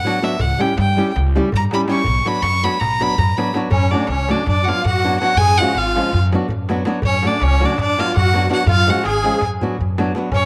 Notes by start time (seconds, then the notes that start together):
Already playing: F#5
0.05 F#3 B3 D4 F#4, darbuka tek
0.22 F#3 B3 D4 F#4 E5, darbuka tek
0.39 C#2 F#5, darbuka dum
0.51 darbuka tek
0.58 G3 C#4 E4 G4 G5, darbuka tek
0.78 G2 G5, darbuka tek
0.89 darbuka tek
0.96 G3 C#4 E4 G4, darbuka tek
1.08 darbuka tek
1.16 C#2, darbuka tek
1.26 darbuka tek
1.36 G3 C#4 E4 G4, darbuka tek
1.44 darbuka tek
1.52 G2 A#5, darbuka dum
1.71 G3 C#4 E4 G4 B5, darbuka tek
1.88 G3 C#4 E4 G4 C#6, darbuka tek
2.04 B1, darbuka dum
2.16 darbuka tek
2.25 F#3 B3 D4 F#4 B5, darbuka tek
2.35 darbuka tek
2.42 F#2 C#6, darbuka tek
2.63 F#3 B3 D4 F#4 B5, darbuka tek
2.74 darbuka tek
2.80 B1 A#5, darbuka tek, darbuka dum
2.92 darbuka tek
3.00 F#3 B3 D4 F#4 B5, darbuka tek
3.10 darbuka tek
3.18 F#2 A#5, darbuka dum
3.29 darbuka tek
3.37 F#3 B3 D4 F#4 B5, darbuka tek
3.54 F#3 B3 D4 F#4, darbuka tek
3.63 darbuka tek
3.71 F#2 C#4 C#5, darbuka dum
3.91 F#3 A3 C#4 D4 F#4 D5, darbuka tek
4.07 C#2 C#4 C#5, darbuka tek
4.19 darbuka tek
4.29 F#3 A3 C#4 D4 F#4 D5, darbuka tek
4.46 F#2 D4 D5, darbuka tek, darbuka dum
4.57 darbuka tek
4.63 F#4 F#5
4.67 F#3 B3 D4 F4 F#4 F5, darbuka tek
4.77 darbuka tek
4.84 F#2 F#4 F#5, darbuka dum
5.04 F#3 B3 D4 F#4
5.20 F#3 B3 D4 F#4 F#5, darbuka tek
5.30 darbuka tek
5.37 F#2 G#4 G#5, darbuka dum
5.58 F3 G#3 C#4 F4 F#4 F#5, darbuka tek
5.75 G#1 F4 F5, darbuka tek
5.96 F3 G#3 C#4 F4, darbuka tek
6.04 darbuka tek
6.12 F#2, darbuka tek, darbuka dum
6.22 darbuka tek
6.32 F#3 B3 D4 F#4, darbuka tek
6.41 darbuka tek
6.49 F#2, darbuka dum
6.69 F#3 B3 D4 F#4, darbuka tek
6.76 darbuka tek
6.85 F#3 B3 D4 F#4, darbuka tek
6.94 darbuka tek
7.02 F#2 C#5, darbuka dum
7.07 C#4
7.22 F#3 A3 C#4 D4 F#4, darbuka tek
7.27 D5
7.40 C#2 C#4 C#5, darbuka tek
7.60 F#3 A3 C#4 D4 F#4, darbuka tek
7.65 D5
7.70 darbuka tek
7.78 F#2 D4 D5, darbuka tek, darbuka dum
7.89 darbuka tek
7.98 F#3 B3 D4 F4 F#4 F5, darbuka tek
8.08 darbuka tek
8.16 F#2 F#4 F#5, darbuka dum
8.34 F#3 B3 D4 F#4, darbuka tek
8.49 F#3 B3 D4 F#4, darbuka tek
8.53 F#5
8.66 F#2 F4 F5, darbuka dum
8.77 darbuka tek
8.86 F3 G#3 C#4 F4 F#4 F#5, darbuka tek
9.03 G#1 G#4, darbuka tek
9.08 G#5
9.24 F3 G#3 C#4 F4, darbuka tek
9.41 F#2, darbuka tek, darbuka dum
9.52 darbuka tek
9.61 F#3 B3 D4 F#4, darbuka dum
9.78 F#2, darbuka dum
9.98 F#3 B3 D4 F#4, darbuka tek
10.15 F#3 B3 D4 F#4, darbuka tek
10.31 F#2 C#4, darbuka dum
10.35 C#5